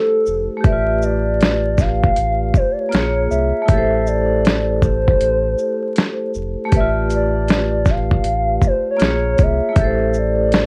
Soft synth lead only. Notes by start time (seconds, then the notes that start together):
Already playing: A4
0.65 E5
1.03 D5
1.80 F5
2.57 C5
2.71 D5
2.79 C#5
3.31 E5
4.07 D5
4.83 C5
6.76 E5
7.15 D5
7.90 F5
8.67 C5
8.91 C#5
9.42 E5
10.18 D5